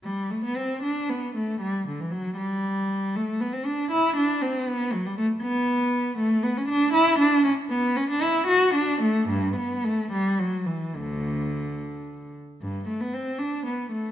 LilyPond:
\new Staff \with { instrumentName = "Cello" } { \time 6/8 \key g \major \tempo 4. = 78 << { g8 a16 b16 c'8 d'8 b8 a8 | g8 d16 e16 fis8 g4. | a8 b16 c'16 d'8 e'8 d'8 c'8 | b8 fis16 g16 a8 b4. |
\key d \major a8 b16 cis'16 d'8 e'8 d'8 cis'8 | b8 cis'16 d'16 e'8 fis'8 d'8 a8 | g,8 b8 a8 g8 fis8 e8 | d2~ d8 r8 |
\key g \major g,8 a16 b16 c'8 d'8 b8 a8 | } \\ { r2. | r2. | r2. | r2. |
r2. | r2. | r2. | d,4. r4. |
r2. | } >> }